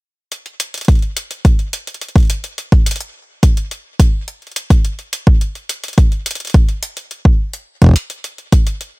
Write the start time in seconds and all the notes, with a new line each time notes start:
0.32 closed hi-hat
0.46 closed hi-hat
0.60 closed hi-hat
0.74 closed hi-hat
0.78 closed hi-hat
0.81 closed hi-hat
0.85 kick, closed hi-hat
0.88 closed hi-hat
0.95 closed hi-hat
0.99 closed hi-hat
1.02 closed hi-hat
1.17 closed hi-hat
1.31 closed hi-hat
1.45 kick, closed hi-hat
1.59 closed hi-hat
1.73 closed hi-hat
1.87 closed hi-hat
1.94 closed hi-hat
2.01 closed hi-hat
2.08 closed hi-hat
2.16 kick, closed hi-hat
2.18 closed hi-hat
2.20 closed hi-hat
2.23 closed hi-hat
2.25 closed hi-hat
2.27 closed hi-hat
2.30 closed hi-hat
2.44 closed hi-hat
2.58 closed hi-hat
2.72 kick, closed hi-hat
2.86 closed hi-hat
2.91 closed hi-hat
2.96 closed hi-hat
3.01 closed hi-hat
3.43 kick, closed hi-hat
3.57 closed hi-hat
3.71 closed hi-hat
4.00 kick, closed hi-hat
4.28 closed hi-hat
4.42 closed hi-hat
4.47 closed hi-hat
4.52 closed hi-hat
4.56 closed hi-hat
4.70 kick, closed hi-hat
4.85 closed hi-hat
4.99 closed hi-hat
5.13 closed hi-hat
5.27 kick
5.41 closed hi-hat
5.55 closed hi-hat
5.69 closed hi-hat
5.84 closed hi-hat
5.88 closed hi-hat
5.93 closed hi-hat
5.98 kick, closed hi-hat
6.12 closed hi-hat
6.26 closed hi-hat
6.31 closed hi-hat
6.35 closed hi-hat
6.40 closed hi-hat
6.45 closed hi-hat
6.47 closed hi-hat
6.50 closed hi-hat
6.54 kick, closed hi-hat
6.69 closed hi-hat
6.83 closed hi-hat
6.97 closed hi-hat
7.11 closed hi-hat
7.25 kick
7.53 closed hi-hat
7.82 kick, closed hi-hat
7.84 kick
7.86 kick
7.89 kick
7.91 kick
7.94 kick, closed hi-hat
8.10 closed hi-hat
8.24 closed hi-hat
8.38 closed hi-hat
8.52 kick, closed hi-hat
8.67 closed hi-hat
8.81 closed hi-hat